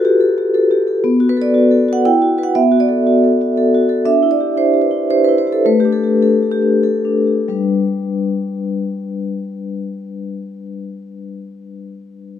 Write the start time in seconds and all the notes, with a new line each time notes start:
Already playing: F4 F#4 G4 A4 B4
0.05 G4
0.20 A4
0.38 G4
0.54 A4
0.71 G4
0.87 A4
1.04 B3
1.20 F#4
1.29 B4
1.37 A4
1.42 D5
1.54 F#4
1.71 A4
1.88 F#4
1.93 F#5
2.05 E4 G5
2.22 F#4
2.38 F#4 B4
2.43 F#5
2.55 B3 E5
2.72 F#4
2.80 D5
2.89 A4
3.07 F#4
3.24 A4
3.41 F#4
3.57 A4
3.74 F#4
3.89 A4
4.05 D4 E5
4.23 E4
4.31 D5
4.40 G4
4.57 E4 C5
4.74 G4
4.82 B4
4.91 E4
5.10 G4 C5
5.24 B4
5.29 E4
5.38 C5
5.47 G4
5.52 A4
5.65 A3 B4
5.80 G4
5.85 D4
5.92 A4
6.04 G4
6.22 D4 A4
6.43 G4
6.51 G4
6.62 D4
6.83 G4 A4
7.05 D4
7.27 G4
7.48 G3 D4 B4